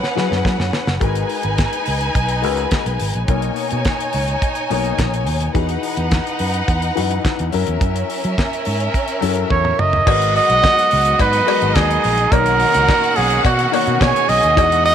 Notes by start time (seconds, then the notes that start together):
Already playing: F#3 C#4 E4 G#4 B4 F#5
0.04 snare
0.15 F#3 E4 G#4 B4, snare
0.31 F#2, snare
0.45 F#3, kick, snare
0.59 F#2, snare
0.73 snare
0.87 F#1, snare
1.00 G#1 G#3 D#4 F#4 A#4 B4 G#5, kick, closed hi-hat
1.15 closed hi-hat
1.29 open hi-hat
1.43 G#1, closed hi-hat
1.58 kick, snare, closed hi-hat
1.73 closed hi-hat
1.86 C#2, open hi-hat
2.01 closed hi-hat
2.15 B1, kick, closed hi-hat
2.29 closed hi-hat
2.42 C#2 G#3 F#4 A#4 B4, open hi-hat
2.57 closed hi-hat
2.71 kick, snare, closed hi-hat
2.86 B1, closed hi-hat
3.00 G#1, open hi-hat
3.14 A#1, closed hi-hat
3.27 B1 B2 A#3 D#4 C#5 G#5, kick, closed hi-hat
3.42 closed hi-hat
3.56 open hi-hat
3.71 B2, closed hi-hat
3.85 kick, snare, closed hi-hat
4.00 closed hi-hat
4.13 C#2, open hi-hat
4.28 closed hi-hat
4.42 kick, closed hi-hat
4.55 closed hi-hat
4.70 B1 B2 A#3 D#4 C#5, open hi-hat
4.84 closed hi-hat
4.99 A#1, kick, snare, closed hi-hat
5.14 closed hi-hat
5.26 D#2, open hi-hat
5.40 closed hi-hat
5.54 E2 E3 D#4 F#4 G#4 B4 F#5, kick, closed hi-hat
5.69 closed hi-hat
5.83 open hi-hat
5.97 E2, closed hi-hat
6.11 kick, snare, closed hi-hat
6.27 closed hi-hat
6.39 F#2, open hi-hat
6.54 closed hi-hat
6.68 E2, kick, closed hi-hat
6.82 closed hi-hat
6.95 F#2 E3 D#4 F#4 B4, open hi-hat
7.11 closed hi-hat
7.25 kick, snare, closed hi-hat
7.39 E2, closed hi-hat
7.52 F#2 F#3 C#4 E4 A#4 E5, open hi-hat
7.67 E2, closed hi-hat
7.81 F#2, kick, closed hi-hat
7.96 closed hi-hat
8.10 open hi-hat
8.24 F#3, closed hi-hat
8.38 kick, snare, closed hi-hat
8.53 closed hi-hat
8.65 G#2, open hi-hat
8.80 closed hi-hat
8.94 kick, closed hi-hat
9.08 closed hi-hat
9.21 F#2 F#3 C#4 E4 A4, open hi-hat
9.29 A#4
9.36 closed hi-hat
9.50 E2 C#5, kick, high tom
9.65 mid tom
9.79 F#1 D#5, mid tom
9.93 floor tom
10.06 G#1 D#3 F#3 G#3 B3 F#4 A#4 B4 F#5, kick, crash, cowbell
10.22 closed hi-hat
10.36 D#5, open hi-hat
10.50 B1, closed hi-hat
10.63 kick, snare, closed hi-hat, cowbell
10.78 closed hi-hat
10.91 C#2, open hi-hat
11.05 closed hi-hat
11.19 G#2 D#4 B4 D#5, kick, closed hi-hat, cowbell
11.33 closed hi-hat
11.47 G#3 F#4 A#4 B4, open hi-hat, cowbell
11.62 G#1, closed hi-hat
11.75 D#2 G#4, kick, snare, closed hi-hat, cowbell
11.91 closed hi-hat
12.04 A#1, open hi-hat
12.17 closed hi-hat
12.31 B1 B2 A#3 C#4 D#4 F#4 A#4 C#5 F#5, kick, closed hi-hat, cowbell
12.46 closed hi-hat
12.60 open hi-hat
12.74 C#2, closed hi-hat
12.88 kick, snare, closed hi-hat, cowbell
13.04 closed hi-hat
13.16 B1 G#4, open hi-hat
13.30 closed hi-hat
13.45 B2 F#4, kick, closed hi-hat, cowbell
13.59 closed hi-hat
13.72 B2 A#3 D#4 F#4 C#5, open hi-hat, cowbell
13.87 B2, closed hi-hat
14.00 B2 G#4 C#5 G#5, kick, snare, closed hi-hat, cowbell
14.16 closed hi-hat
14.29 B1 D#5, open hi-hat
14.43 D#2, closed hi-hat
14.56 E2 E3 G#3 D#4 F#4 G#4 F#5, kick, closed hi-hat, cowbell
14.72 closed hi-hat
14.85 D#5, open hi-hat